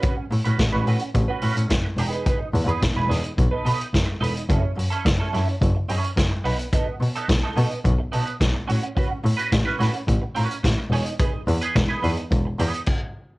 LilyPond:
<<
  \new Staff \with { instrumentName = "Clean electric guitar" } { \time 4/4 \key fis \dorian \tempo 4 = 108 <cis' fis' b'>8 r16 <cis' fis' b'>16 r16 <cis' fis' b'>16 <cis' fis' b'>8 r16 <cis' fis' b'>16 <cis' fis' b'>8 r8 <dis' gis' b'>16 <dis' gis' b'>16 | <dis' gis' b'>8 r16 <dis' gis' b'>16 r16 <dis' gis' b'>16 <dis' gis' b'>8 r16 <dis' a' b'>16 <dis' a' b'>8 r8 <dis' a' b'>8 | <cis' e' a'>8 r16 <cis' e' a'>16 r16 <cis' e' a'>16 <cis' e' a'>8 r8 <cis' e' a'>8 r8 <b dis' b'>8 | <b dis' a'>8 r16 <b dis' a'>16 r16 <b dis' a'>16 <b dis' a'>8 r8 <b dis' a'>8 r8 <cis' fis' cis''>8 |
<cis' fis' b'>8 r16 <cis' fis' b'>16 r16 <cis' fis' b'>16 <cis' fis' b'>8 r8 <cis' fis' b'>8 r8 <dis' gis' cis''>8 | <dis' gis' b'>8 r16 <dis' gis' b'>16 r16 <dis' gis' b'>16 <dis' gis' b'>8 r8 <dis' gis' b'>8 r4 | }
  \new Staff \with { instrumentName = "Double bass" } { \clef bass \time 4/4 \key fis \dorian r8 a,16 a,16 a,,16 a,,16 a,8 a,,8 a,16 a,16 fis,,8 e,,8~ | e,,8 e,16 e,16 e,,16 e,,16 e,8 b,,8 b,8 fis,,8 e,,8 | fis,,8 fis,8 fis,,8 fis,8 fis,,8 fis,8 fis,,8 b,,8~ | b,,8 b,8 b,,8 b,8 b,,8 b,8 b,,8 a,8~ |
a,8 a,8 a,,8 a,8 a,,8 a,8 a,,8 e,,8~ | e,,8 e,8 e,,8 e,8 e,,8 e,8 r4 | }
  \new DrumStaff \with { instrumentName = "Drums" } \drummode { \time 4/4 <hh bd>8 hho16 hh16 <hh bd sn>8 hho16 hh16 <hh bd>8 hho16 hh16 <hh bd sn>8 hho16 hh16 | <hh bd>8 hho16 hh16 <hh bd sn>8 <hho sn>16 hh16 <hh bd>8 hho16 hh16 <hh bd sn>8 hho16 hh16 | <hh bd>8 hho16 hh16 <hh bd sn>8 <hho sn>16 hh16 <hh bd>8 hho16 hh16 <hh bd sn>8 hho16 hh16 | <hh bd>8 hho16 hh16 <hh bd sn>8 hho16 hh16 <hh bd>8 hho16 hh16 <hh bd sn>8 hho16 hh16 |
<hh bd>8 hho16 hh16 <hh bd sn>8 <hho sn>16 hh16 <hh bd>8 hho16 hh16 <hh bd sn>8 hho16 hh16 | <hh bd>8 hho16 hh16 <hh bd sn>8 hho16 hh16 <hh bd>8 hho16 hh16 <cymc bd>4 | }
>>